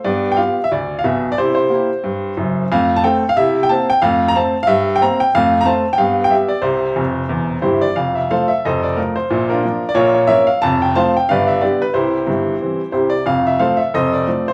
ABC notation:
X:1
M:4/4
L:1/16
Q:"Swing" 1/4=182
K:F
V:1 name="Upright piano"
d3 g f3 e d3 f e3 d | c2 c12- c2 | f3 a g3 f e3 g a2 g2 | f3 b a3 f e3 g b2 g2 |
f3 b a3 g f3 g e2 d2 | c12 [EGc]2 d2 | f2 e2 [Acf]2 e2 [Ac_e]2 d2 B2 c2- | c2 [DFB]4- [DFB] d [FB_d]2 d2 [Bde]2 f2 |
a2 g2 [cfa]2 g2 [=Bdf]2 e2 [GBd]2 B2 | [EGc]12 [EGc]2 d2 | f2 e2 [Acf]2 e2 [Ac_e]2 d4 c2 |]
V:2 name="Upright piano" clef=bass
[G,,=B,]4 [B,FG]4 D,,4 [=B,,,=B,,]4 | [C,E]4 [B,EG]4 G,,4 [_G,,,_G,,]4 | [F,,A,]4 [A,CA]4 [C,E]4 [B,Cc]4 | [F,,A,]4 [A,Cc]4 G,,4 [B,Cc]4 |
[F,,A,]4 [A,Cc]4 [G,,=B,]4 [G,B,G]4 | [C,,C,]4 [F,,,F,,]4 [E,,,E,,]4 [G,,,G,,]4 | [F,,,F,,]4 [F,A,F]4 [F,,,F,,]4 [F,A,F]4 | [B,,,B,,]4 [F,B,D]4 [B,,,B,,]4 [F,B,_D]4 |
[F,,,F,,]4 [F,A,C]4 [G,,,G,,]4 [D,G,=B,]4 | [C,,C,]4 [G,,,G,,]4 [E,G,C]4 [C,,C,]4 | [F,,,F,,]4 [F,A,C]4 [F,,,F,,]4 [F,A,C]4 |]